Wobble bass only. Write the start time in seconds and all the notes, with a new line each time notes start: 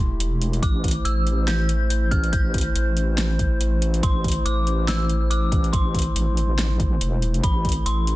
Already playing: E1
0.63 A1
1.05 A1
2.33 A1
2.75 A1
4.03 A1
4.46 A1
5.73 A1
6.16 A1
7.01 E1
7.43 A1
7.86 A1